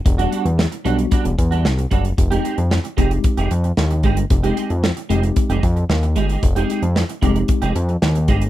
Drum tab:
HH |xxxx-xxxxxxx-xxx|xxxx-xxxxxxx-xxx|xxxx-xxxxxxx-xxx|xxxx-xxxxxxx-xxx|
SD |----o-------o---|----o-------o---|----o-------o---|----o-------o---|
BD |o-------o-o---o-|o-----o-o-----o-|o-------o-o-----|o-----o-o-----o-|